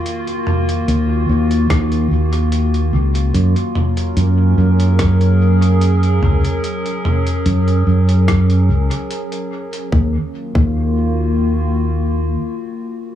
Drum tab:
HH |xx-xx--xxx-xxx-x|xx-xx--xxx-xxx-x|xx-xxx-xxx-xxx-x|----------------|
SD |--------r-------|--------r-------|--------r-------|----------------|
T2 |--o-------------|--o-----------o-|--o-------------|----------------|
BD |--------o-------|--------o-------|--------o-------|o--o------------|